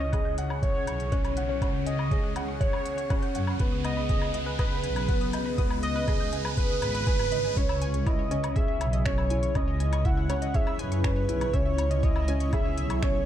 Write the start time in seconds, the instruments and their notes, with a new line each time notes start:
Already playing: double bass section C#2, ambient pad C#3 C#4 E4 C#5, felt piano C#4, soft synth lead D#5, riser
0.00 synth arpeggio sound C#5
0.13 felt piano G#4, synth arpeggio sound F#5, kick, closed hi-hat, low woodblock
0.25 synth arpeggio sound G6
0.31 ambient pad G#4
0.38 felt piano F#5, synth arpeggio sound G#5, closed hi-hat
0.50 synth arpeggio sound C#5, low woodblock
0.62 soft synth lead C#5, synth arpeggio sound C#5, felt piano C#5, kick, closed hi-hat
0.75 synth arpeggio sound F#6
0.87 double bass section B1, synth arpeggio sound G6, closed hi-hat, low woodblock
0.99 synth arpeggio sound C#6, closed hi-hat
1.07 ambient pad F#5
1.12 felt piano C#4, synth arpeggio sound F#6, kick, closed hi-hat
1.24 synth arpeggio sound C#6, closed hi-hat, low woodblock
1.37 synth arpeggio sound F#5, felt piano F#5, closed hi-hat
1.49 synth arpeggio sound C#5
1.61 double bass section C#2, felt piano C#4, synth arpeggio sound F#5, kick, closed hi-hat, low woodblock
1.74 synth arpeggio sound G6
1.86 soft synth lead D#5, synth arpeggio sound G#5, closed hi-hat
1.99 synth arpeggio sound C#5, low woodblock
2.11 felt piano G#4, synth arpeggio sound C#5, kick, closed hi-hat
2.24 synth arpeggio sound F#6
2.36 felt piano F#5, synth arpeggio sound G6, closed hi-hat, low woodblock
2.48 synth arpeggio sound C#6
2.60 soft synth lead C#5, felt piano C#5, synth arpeggio sound F#6, kick, closed hi-hat
2.73 synth arpeggio sound C#6, low woodblock
2.85 synth arpeggio sound F#5, closed hi-hat
2.98 synth arpeggio sound C#5, closed hi-hat
3.10 felt piano C#4, synth arpeggio sound F#5, kick, closed hi-hat, low woodblock
3.22 synth arpeggio sound G6, closed hi-hat
3.35 double bass section F#2, felt piano F#5, synth arpeggio sound G#5, closed hi-hat
3.47 synth arpeggio sound C#5, low woodblock
3.60 double bass section C#2, ambient pad C#3, felt piano B3, synth arpeggio sound B4, kick, closed hi-hat
3.72 synth arpeggio sound D#6
3.85 soft synth lead D#5, synth arpeggio sound G6, closed hi-hat, low woodblock
3.97 synth arpeggio sound B5
4.09 felt piano G#4, synth arpeggio sound D#6, kick, closed hi-hat
4.20 ambient pad B4, synth arpeggio sound B5, low woodblock
4.34 felt piano D#5, synth arpeggio sound D#5, closed hi-hat
4.46 synth arpeggio sound B4
4.59 soft synth lead B4, felt piano B4, synth arpeggio sound D#5, kick, closed hi-hat, low woodblock
4.71 synth arpeggio sound G6
4.84 double bass section B1, synth arpeggio sound G#5, closed hi-hat
4.96 synth arpeggio sound B4, closed hi-hat, low woodblock
5.08 felt piano B3, synth arpeggio sound B4, kick, closed hi-hat
5.21 synth arpeggio sound D#6, closed hi-hat
5.33 felt piano D#5, synth arpeggio sound G6, closed hi-hat, low woodblock
5.46 synth arpeggio sound B5
5.58 double bass section C#2, felt piano B3, synth arpeggio sound D#6, kick, closed hi-hat
5.70 synth arpeggio sound B5, low woodblock
5.83 soft synth lead D#5, synth arpeggio sound D#5, closed hi-hat
5.96 synth arpeggio sound B4
6.08 felt piano G#4, synth arpeggio sound D#5, kick, closed hi-hat, low woodblock
6.20 synth arpeggio sound G6
6.33 felt piano D#5, synth arpeggio sound G#5, closed hi-hat
6.45 synth arpeggio sound B4, low woodblock
6.57 synth arpeggio sound B4, felt piano B4, soft synth lead B4, kick, closed hi-hat
6.70 synth arpeggio sound D#6
6.82 double bass section G#1, synth arpeggio sound B4, soft synth lead B4, closed hi-hat, low woodblock
6.95 synth arpeggio sound B4, closed hi-hat
7.07 felt piano B4, synth arpeggio sound G#5, kick, closed hi-hat
7.19 synth arpeggio sound B4, closed hi-hat, low woodblock
7.32 felt piano D#5, synth arpeggio sound B5, closed hi-hat
7.45 synth arpeggio sound G#5
7.57 double bass section C#2, felt piano C#4, synth arpeggio sound C#5, soft synth lead C#5, kick, closed hi-hat
7.69 synth arpeggio sound E6, low woodblock
7.82 ambient pad C#4, synth arpeggio sound G#5, closed hi-hat
7.94 synth arpeggio sound C#6, closed hi-hat
8.06 felt piano E4, synth arpeggio sound C#5, soft synth lead D#5, kick, closed hi-hat, low woodblock
8.19 synth arpeggio sound C#5
8.31 felt piano C#4, synth arpeggio sound G#5, closed hi-hat
8.36 ambient pad C#5
8.41 ambient pad E4, synth arpeggio sound C#6, closed hi-hat, low woodblock
8.56 felt piano G#4, synth arpeggio sound E5, soft synth lead E5, kick, closed hi-hat
8.68 synth arpeggio sound E5
8.81 double bass section B1, synth arpeggio sound C#5, closed hi-hat, low woodblock
8.93 synth arpeggio sound D#5, closed hi-hat
9.05 felt piano C#4, synth arpeggio sound C#5, soft synth lead C#5, finger snap, kick, closed hi-hat
9.18 synth arpeggio sound E6, low woodblock
9.30 felt piano E4, synth arpeggio sound G#5, closed hi-hat
9.43 synth arpeggio sound C#6, closed hi-hat
9.55 double bass section C#2, felt piano C#4, synth arpeggio sound C#5, soft synth lead D#5, kick, closed hi-hat, low woodblock
9.68 synth arpeggio sound C#5
9.80 synth arpeggio sound G#5, closed hi-hat
9.92 synth arpeggio sound C#6, closed hi-hat, low woodblock
10.05 felt piano E4, synth arpeggio sound E5, soft synth lead F#5, kick, closed hi-hat
10.17 synth arpeggio sound E5
10.30 felt piano C#4, synth arpeggio sound C#5, closed hi-hat, low woodblock
10.42 synth arpeggio sound D#5, closed hi-hat
10.54 felt piano G#4, synth arpeggio sound C#5, soft synth lead E5, kick, closed hi-hat
10.67 synth arpeggio sound E6, low woodblock
10.79 double bass section F#2, soft synth lead B4, synth arpeggio sound G#5, closed hi-hat
10.92 synth arpeggio sound C#6, closed hi-hat
11.04 felt piano C#4, synth arpeggio sound C#5, finger snap, kick, closed hi-hat, low woodblock
11.16 synth arpeggio sound C#5
11.29 double bass section B1, felt piano E4, synth arpeggio sound G#5, closed hi-hat
11.41 synth arpeggio sound C#6, closed hi-hat, low woodblock
11.53 double bass section C#2, felt piano C#4, soft synth lead C#5, synth arpeggio sound E5, kick, closed hi-hat
11.66 synth arpeggio sound E5
11.78 synth arpeggio sound C#5, closed hi-hat, low woodblock
11.91 synth arpeggio sound D#5, closed hi-hat
12.03 felt piano E4, synth arpeggio sound C#5, soft synth lead D#5, kick, closed hi-hat
12.16 synth arpeggio sound E6, low woodblock
12.28 felt piano C#4, synth arpeggio sound G#5, closed hi-hat
12.40 synth arpeggio sound C#6, closed hi-hat
12.53 felt piano G#4, synth arpeggio sound C#5, soft synth lead E5, kick, closed hi-hat, low woodblock
12.65 synth arpeggio sound C#5
12.77 double bass section B1, synth arpeggio sound G#5, closed hi-hat
12.90 synth arpeggio sound C#6, closed hi-hat, low woodblock
13.02 felt piano C#4, soft synth lead C#5, synth arpeggio sound E5, finger snap, kick, closed hi-hat
13.15 synth arpeggio sound E5